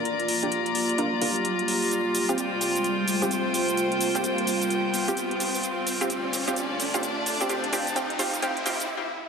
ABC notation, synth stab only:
X:1
M:4/4
L:1/16
Q:"Swing 16ths" 1/4=129
K:Cmix
V:1 name="Synth stab"
z3 [DFG] z4 [DFB] z [DFB] z4 z | z3 [CFG] z6 z [CFG] z4 | z3 [CFG] z6 z [CFG] z4 | z3 [CFG] z3 [CFG] z3 [CFG] z3 [CFG] |
[CFG] z [CFG] z [CFG] z [CFG] z [CFG] z [CFG] z4 z |]